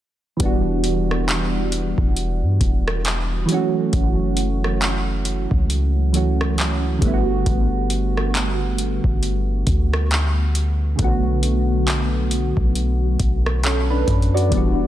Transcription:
0.37 1.94 E1 loud
0.37 3.43 E3 medium
0.37 3.44 G3 medium
0.37 kick loud
0.37 closed hi-hat medium
0.41 3.45 B3 medium
0.41 3.46 D4 medium
0.45 3.48 F#4 medium
0.84 closed hi-hat medium
1.11 cross-stick medium
1.29 clap loud
1.29 closed hi-hat medium
1.72 closed hi-hat medium
1.98 2.44 E1 loud
1.98 kick medium
2.17 closed hi-hat medium
2.42 2.60 G2 medium
2.61 3.45 E1 loud
2.61 kick medium
2.61 closed hi-hat medium
2.88 cross-stick loud
3.05 clap loud
3.05 closed hi-hat medium
3.45 6.08 E3 medium
3.45 6.09 F#3 medium
3.45 closed hi-hat medium
3.50 3.57 G#3 medium
3.50 6.11 C#4 medium
3.54 6.13 A3 medium
3.54 6.12 F#4 medium
3.93 5.47 F#1 loud
3.93 kick loud
3.93 closed hi-hat medium
4.37 closed hi-hat medium
4.64 cross-stick medium
4.82 clap loud
4.82 closed hi-hat medium
5.25 closed hi-hat medium
5.51 6.98 C#2 loud
5.51 kick medium
5.70 closed hi-hat medium
6.13 7.01 E3 medium
6.13 7.02 F#3 medium
6.13 7.02 A3 medium
6.13 7.03 C#4 medium
6.13 closed hi-hat medium
6.17 7.03 F#4 medium
6.41 cross-stick medium
6.58 clap loud
6.58 closed hi-hat medium
6.99 7.44 G1 loud
6.99 10.49 D3 medium
6.99 10.50 G3 medium
6.99 kick loud
6.99 closed hi-hat medium
7.03 10.51 A3 medium
7.03 10.52 B3 medium
7.07 7.12 E4 medium
7.14 10.57 F#4 medium
7.46 9.00 G1 loud
7.46 kick loud
7.46 closed hi-hat medium
7.90 closed hi-hat medium
8.17 cross-stick medium
8.35 clap loud
8.35 closed hi-hat medium
8.78 closed hi-hat medium
9.04 9.64 G1 loud
9.04 kick medium
9.23 closed hi-hat medium
9.67 10.95 D2 loud
9.67 kick medium
9.67 closed hi-hat medium
9.94 cross-stick loud
10.11 clap loud
10.11 closed hi-hat medium
10.55 closed hi-hat medium
10.96 12.53 B1 loud
10.96 11.05 C#3 medium
10.96 14.47 F#3 medium
10.96 kick loud
10.96 closed hi-hat medium
11.00 14.50 D3 medium
11.00 14.48 A3 medium
11.00 14.49 B3 medium
11.04 13.62 F#4 medium
11.43 closed hi-hat medium
11.88 clap loud
11.88 closed hi-hat medium
12.31 closed hi-hat medium
12.57 13.17 B1 loud
12.57 kick medium
12.75 closed hi-hat medium
13.20 14.04 B1 loud
13.20 kick medium
13.20 closed hi-hat medium
13.46 cross-stick medium
13.63 13.89 C#4 medium
13.63 13.88 A4 medium
13.63 clap loud
13.63 closed hi-hat medium
13.90 14.32 D4 medium
13.90 14.32 B4 medium
14.07 14.50 F#2 loud
14.07 kick loud
14.07 closed hi-hat medium
14.22 closed hi-hat soft
14.34 14.56 F#4 medium
14.34 14.76 D5 medium
14.34 closed hi-hat soft
14.49 14.87 E1 loud
14.49 14.87 E3 medium
14.49 14.87 G3 medium
14.49 kick loud
14.49 closed hi-hat medium
14.53 14.87 B3 medium
14.53 14.87 D4 medium
14.57 14.87 F#4 medium

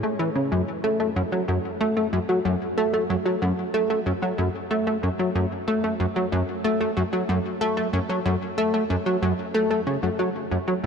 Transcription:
0.03 0.13 A3 medium
0.19 0.29 E3 loud
0.35 0.51 C#3 medium
0.52 0.62 F#2 loud
0.84 0.99 A3 medium
1.00 1.10 A3 medium
1.16 1.22 F#2 medium
1.32 1.42 F#3 medium
1.48 1.58 F#2 loud
1.81 1.96 A3 loud
1.97 2.07 A3 medium
2.13 2.19 F#2 loud
2.29 2.39 F#3 medium
2.45 2.55 F#2 loud
2.77 2.93 A3 loud
2.94 3.04 A3 medium
3.10 3.16 F#2 medium
3.26 3.36 F#3 medium
3.42 3.52 F#2 medium
3.74 3.89 A3 loud
3.90 4.00 A3 medium
4.06 4.12 F#2 medium
4.22 4.33 F#3 medium
4.38 4.49 F#2 loud
4.71 4.86 A3 medium
4.87 4.97 A3 medium
5.03 5.09 F#2 loud
5.19 5.29 F#3 medium
5.35 5.45 F#2 loud
5.68 5.83 A3 loud
5.84 5.94 A3 medium
6.00 6.06 F#2 medium
6.16 6.26 F#3 medium
6.32 6.42 F#2 loud
6.64 6.80 A3 loud
6.80 6.91 A3 medium
6.97 7.03 F#2 loud
7.13 7.23 F#3 medium
7.29 7.39 F#2 medium
7.61 7.76 A3 loud
7.77 7.87 A3 medium
7.93 7.99 F#2 loud
8.09 8.20 F#3 medium
8.25 8.36 F#2 loud
8.58 8.73 A3 loud
8.74 8.84 A3 medium
8.90 8.96 F#2 loud
9.06 9.16 F#3 medium
9.22 9.33 F#2 loud
9.54 9.70 A3 loud
9.71 9.81 A3 medium
9.87 9.97 C#3 medium
10.03 10.09 F#2 medium
10.19 10.29 F#3 medium
10.51 10.58 F#2 medium
10.68 10.74 F#3 medium

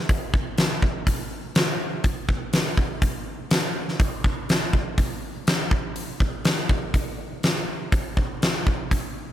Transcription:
0.09 kick loud
0.09 open hi-hat soft
0.34 kick medium
0.58 snare medium
0.58 open hi-hat soft
0.82 kick medium
1.07 kick medium
1.07 open hi-hat medium
1.55 snare loud
1.55 open hi-hat medium
2.04 kick medium
2.04 open hi-hat medium
2.29 kick medium
2.53 snare medium
2.53 open hi-hat soft
2.77 kick medium
3.02 kick medium
3.02 open hi-hat soft
3.51 snare loud
3.51 open hi-hat soft
3.88 snare soft
4.00 kick loud
4.00 open hi-hat soft
4.24 kick medium
4.49 snare medium
4.49 open hi-hat soft
4.73 kick medium
4.98 kick medium
4.98 open hi-hat medium
5.47 snare loud
5.47 open hi-hat medium
5.71 kick medium
5.96 open hi-hat medium
6.20 kick medium
6.45 snare loud
6.45 open hi-hat soft
6.69 kick medium
6.94 kick medium
6.94 open hi-hat soft
7.43 snare medium
7.43 open hi-hat soft
7.92 kick loud
7.92 open hi-hat soft
8.17 kick medium
8.42 snare loud
8.42 open hi-hat soft
8.67 kick medium
8.91 kick medium
8.91 open hi-hat medium

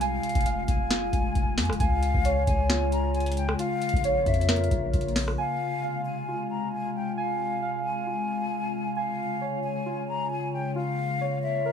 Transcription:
0.00 0.19 C2 loud
0.00 1.77 C3 medium
0.00 3.55 G#3 medium
0.00 0.89 F4 loud
0.00 1.76 F4 medium
0.00 0.44 F5 medium
0.00 0.64 F5 loud
0.00 1.79 G#5 loud
0.00 closed hi-hat medium
0.23 closed hi-hat medium
0.29 closed hi-hat medium
0.35 0.67 F1 loud
0.35 kick loud
0.35 closed hi-hat medium
0.41 closed hi-hat medium
0.46 1.80 F5 loud
0.46 closed hi-hat medium
0.68 1.11 F1 loud
0.68 1.76 G#5 medium
0.68 kick loud
0.68 closed hi-hat medium
0.90 1.80 F4 medium
0.90 snare loud
0.90 closed hi-hat medium
1.13 1.34 F1 loud
1.13 kick medium
1.13 closed hi-hat medium
1.35 1.59 F1 loud
1.35 kick medium
1.35 closed hi-hat medium
1.58 1.71 F2 loud
1.58 snare loud
1.58 closed hi-hat soft
1.58 open hi-hat medium
1.65 closed hi-hat medium
1.70 1.80 F1 loud
1.70 cross-stick loud
1.70 closed hi-hat medium
1.80 2.13 C#2 loud
1.80 3.57 C#3 medium
1.80 3.57 F4 medium
1.80 2.43 F5 loud
1.80 3.59 G#5 loud
1.80 kick loud
1.80 closed hi-hat medium
2.03 closed hi-hat medium
2.14 2.46 C#2 loud
2.14 kick loud
2.25 3.59 C#5 medium
2.25 closed hi-hat medium
2.47 3.55 C#2 loud
2.47 2.89 G#5 medium
2.47 kick medium
2.47 closed hi-hat medium
2.69 3.58 F4 loud
2.69 snare loud
2.69 closed hi-hat medium
2.92 3.13 A#5 medium
2.92 closed hi-hat medium
3.14 3.36 G#5 medium
3.14 closed hi-hat soft
3.20 closed hi-hat soft
3.26 closed hi-hat medium
3.32 closed hi-hat medium
3.37 3.58 G5 medium
3.37 closed hi-hat medium
3.49 cross-stick loud
3.59 5.37 C#3 medium
3.59 5.37 A#3 medium
3.59 5.37 F4 medium
3.59 5.38 F4 loud
3.59 4.22 F5 loud
3.59 closed hi-hat medium
3.82 closed hi-hat medium
3.89 closed hi-hat medium
3.93 4.17 A#1 loud
3.93 kick loud
3.93 closed hi-hat medium
4.04 5.39 C#5 medium
4.04 closed hi-hat medium
4.16 4.26 G#1 loud
4.26 4.69 F2 loud
4.26 4.90 E5 medium
4.26 kick medium
4.26 closed hi-hat soft
4.34 closed hi-hat medium
4.41 closed hi-hat medium
4.49 5.38 A#4 loud
4.49 snare loud
4.49 closed hi-hat medium
4.56 closed hi-hat medium
4.64 closed hi-hat medium
4.71 4.93 A#1 loud
4.71 kick medium
4.71 closed hi-hat medium
4.94 5.37 A#1 loud
4.94 kick medium
4.94 closed hi-hat medium
5.01 closed hi-hat medium
5.08 closed hi-hat soft
5.16 snare loud
5.16 open hi-hat medium
5.28 cross-stick loud
5.38 8.93 C3 medium
5.38 10.72 G#3 medium
5.38 10.72 F4 medium
5.38 6.01 F5 loud
5.38 7.16 G#5 loud
5.83 7.61 F5 medium
6.05 6.48 G#5 medium
6.28 8.06 F4 medium
6.50 6.72 A#5 medium
6.73 6.94 G#5 medium
6.95 7.16 G5 medium
7.17 7.81 F5 loud
7.17 8.95 G#5 loud
7.62 8.97 F5 medium
7.85 8.93 G#5 medium
8.07 8.96 F4 medium
8.97 11.72 C#3 medium
8.97 9.60 F5 loud
8.97 10.76 G#5 loud
9.41 10.76 C#5 medium
9.64 10.06 G#5 medium
9.86 10.75 F4 loud
10.09 10.30 A#5 medium
10.31 10.52 G#5 medium
10.53 10.75 G5 medium
10.76 11.72 A#3 medium
10.76 11.72 F4 medium
10.76 11.72 F4 loud
10.76 11.39 F5 loud
11.21 11.72 C#5 medium
11.43 11.72 E5 medium
11.65 11.72 A#4 loud

